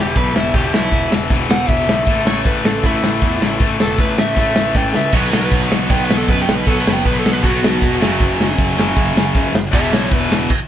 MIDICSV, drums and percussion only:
0, 0, Header, 1, 2, 480
1, 0, Start_track
1, 0, Tempo, 383142
1, 673, Time_signature, 4, 2, 24, 8
1, 13377, End_track
2, 0, Start_track
2, 0, Title_t, "Drums"
2, 200, Note_on_c, 9, 36, 113
2, 201, Note_on_c, 9, 51, 79
2, 325, Note_off_c, 9, 36, 0
2, 326, Note_off_c, 9, 51, 0
2, 451, Note_on_c, 9, 38, 104
2, 576, Note_off_c, 9, 38, 0
2, 675, Note_on_c, 9, 51, 84
2, 677, Note_on_c, 9, 36, 127
2, 800, Note_off_c, 9, 51, 0
2, 802, Note_off_c, 9, 36, 0
2, 926, Note_on_c, 9, 38, 113
2, 1051, Note_off_c, 9, 38, 0
2, 1145, Note_on_c, 9, 51, 78
2, 1152, Note_on_c, 9, 36, 110
2, 1270, Note_off_c, 9, 51, 0
2, 1277, Note_off_c, 9, 36, 0
2, 1407, Note_on_c, 9, 38, 114
2, 1532, Note_off_c, 9, 38, 0
2, 1634, Note_on_c, 9, 36, 118
2, 1638, Note_on_c, 9, 51, 81
2, 1759, Note_off_c, 9, 36, 0
2, 1764, Note_off_c, 9, 51, 0
2, 1888, Note_on_c, 9, 38, 121
2, 2013, Note_off_c, 9, 38, 0
2, 2113, Note_on_c, 9, 36, 123
2, 2113, Note_on_c, 9, 51, 89
2, 2238, Note_off_c, 9, 36, 0
2, 2238, Note_off_c, 9, 51, 0
2, 2368, Note_on_c, 9, 38, 115
2, 2494, Note_off_c, 9, 38, 0
2, 2592, Note_on_c, 9, 51, 89
2, 2593, Note_on_c, 9, 36, 121
2, 2717, Note_off_c, 9, 51, 0
2, 2718, Note_off_c, 9, 36, 0
2, 2843, Note_on_c, 9, 38, 118
2, 2968, Note_off_c, 9, 38, 0
2, 3074, Note_on_c, 9, 36, 120
2, 3074, Note_on_c, 9, 51, 90
2, 3200, Note_off_c, 9, 36, 0
2, 3200, Note_off_c, 9, 51, 0
2, 3323, Note_on_c, 9, 38, 125
2, 3449, Note_off_c, 9, 38, 0
2, 3553, Note_on_c, 9, 51, 84
2, 3555, Note_on_c, 9, 36, 116
2, 3678, Note_off_c, 9, 51, 0
2, 3680, Note_off_c, 9, 36, 0
2, 3805, Note_on_c, 9, 38, 119
2, 3931, Note_off_c, 9, 38, 0
2, 4023, Note_on_c, 9, 51, 84
2, 4033, Note_on_c, 9, 36, 113
2, 4149, Note_off_c, 9, 51, 0
2, 4159, Note_off_c, 9, 36, 0
2, 4287, Note_on_c, 9, 38, 105
2, 4412, Note_off_c, 9, 38, 0
2, 4506, Note_on_c, 9, 51, 83
2, 4514, Note_on_c, 9, 36, 127
2, 4631, Note_off_c, 9, 51, 0
2, 4639, Note_off_c, 9, 36, 0
2, 4763, Note_on_c, 9, 38, 117
2, 4888, Note_off_c, 9, 38, 0
2, 4988, Note_on_c, 9, 51, 81
2, 4993, Note_on_c, 9, 36, 116
2, 5113, Note_off_c, 9, 51, 0
2, 5118, Note_off_c, 9, 36, 0
2, 5242, Note_on_c, 9, 38, 125
2, 5368, Note_off_c, 9, 38, 0
2, 5463, Note_on_c, 9, 51, 81
2, 5470, Note_on_c, 9, 36, 105
2, 5588, Note_off_c, 9, 51, 0
2, 5596, Note_off_c, 9, 36, 0
2, 5710, Note_on_c, 9, 38, 124
2, 5836, Note_off_c, 9, 38, 0
2, 5949, Note_on_c, 9, 36, 105
2, 5957, Note_on_c, 9, 38, 66
2, 6074, Note_off_c, 9, 36, 0
2, 6082, Note_off_c, 9, 38, 0
2, 6194, Note_on_c, 9, 38, 93
2, 6320, Note_off_c, 9, 38, 0
2, 6419, Note_on_c, 9, 49, 113
2, 6419, Note_on_c, 9, 51, 87
2, 6428, Note_on_c, 9, 36, 127
2, 6544, Note_off_c, 9, 49, 0
2, 6544, Note_off_c, 9, 51, 0
2, 6553, Note_off_c, 9, 36, 0
2, 6682, Note_on_c, 9, 38, 112
2, 6807, Note_off_c, 9, 38, 0
2, 6908, Note_on_c, 9, 51, 87
2, 6912, Note_on_c, 9, 36, 123
2, 7033, Note_off_c, 9, 51, 0
2, 7037, Note_off_c, 9, 36, 0
2, 7163, Note_on_c, 9, 38, 115
2, 7288, Note_off_c, 9, 38, 0
2, 7385, Note_on_c, 9, 51, 88
2, 7393, Note_on_c, 9, 36, 127
2, 7510, Note_off_c, 9, 51, 0
2, 7518, Note_off_c, 9, 36, 0
2, 7648, Note_on_c, 9, 38, 127
2, 7774, Note_off_c, 9, 38, 0
2, 7867, Note_on_c, 9, 51, 82
2, 7874, Note_on_c, 9, 36, 125
2, 7992, Note_off_c, 9, 51, 0
2, 7999, Note_off_c, 9, 36, 0
2, 8128, Note_on_c, 9, 38, 114
2, 8253, Note_off_c, 9, 38, 0
2, 8351, Note_on_c, 9, 51, 87
2, 8356, Note_on_c, 9, 36, 121
2, 8476, Note_off_c, 9, 51, 0
2, 8481, Note_off_c, 9, 36, 0
2, 8611, Note_on_c, 9, 38, 127
2, 8737, Note_off_c, 9, 38, 0
2, 8836, Note_on_c, 9, 51, 80
2, 8838, Note_on_c, 9, 36, 112
2, 8961, Note_off_c, 9, 51, 0
2, 8963, Note_off_c, 9, 36, 0
2, 9096, Note_on_c, 9, 38, 114
2, 9221, Note_off_c, 9, 38, 0
2, 9313, Note_on_c, 9, 51, 76
2, 9317, Note_on_c, 9, 36, 114
2, 9439, Note_off_c, 9, 51, 0
2, 9442, Note_off_c, 9, 36, 0
2, 9576, Note_on_c, 9, 38, 121
2, 9701, Note_off_c, 9, 38, 0
2, 9793, Note_on_c, 9, 51, 84
2, 9797, Note_on_c, 9, 36, 115
2, 9919, Note_off_c, 9, 51, 0
2, 9922, Note_off_c, 9, 36, 0
2, 10051, Note_on_c, 9, 38, 115
2, 10176, Note_off_c, 9, 38, 0
2, 10276, Note_on_c, 9, 36, 125
2, 10279, Note_on_c, 9, 51, 84
2, 10401, Note_off_c, 9, 36, 0
2, 10405, Note_off_c, 9, 51, 0
2, 10534, Note_on_c, 9, 38, 108
2, 10659, Note_off_c, 9, 38, 0
2, 10755, Note_on_c, 9, 36, 112
2, 10757, Note_on_c, 9, 51, 83
2, 10880, Note_off_c, 9, 36, 0
2, 10883, Note_off_c, 9, 51, 0
2, 11017, Note_on_c, 9, 38, 108
2, 11143, Note_off_c, 9, 38, 0
2, 11233, Note_on_c, 9, 36, 123
2, 11237, Note_on_c, 9, 51, 78
2, 11359, Note_off_c, 9, 36, 0
2, 11362, Note_off_c, 9, 51, 0
2, 11493, Note_on_c, 9, 38, 127
2, 11618, Note_off_c, 9, 38, 0
2, 11712, Note_on_c, 9, 51, 82
2, 11713, Note_on_c, 9, 36, 116
2, 11837, Note_off_c, 9, 51, 0
2, 11838, Note_off_c, 9, 36, 0
2, 11967, Note_on_c, 9, 38, 110
2, 12093, Note_off_c, 9, 38, 0
2, 12190, Note_on_c, 9, 51, 85
2, 12192, Note_on_c, 9, 36, 127
2, 12316, Note_off_c, 9, 51, 0
2, 12317, Note_off_c, 9, 36, 0
2, 12443, Note_on_c, 9, 38, 120
2, 12568, Note_off_c, 9, 38, 0
2, 12667, Note_on_c, 9, 51, 84
2, 12673, Note_on_c, 9, 36, 122
2, 12793, Note_off_c, 9, 51, 0
2, 12799, Note_off_c, 9, 36, 0
2, 12928, Note_on_c, 9, 38, 114
2, 13053, Note_off_c, 9, 38, 0
2, 13154, Note_on_c, 9, 49, 116
2, 13156, Note_on_c, 9, 36, 109
2, 13279, Note_off_c, 9, 49, 0
2, 13281, Note_off_c, 9, 36, 0
2, 13377, End_track
0, 0, End_of_file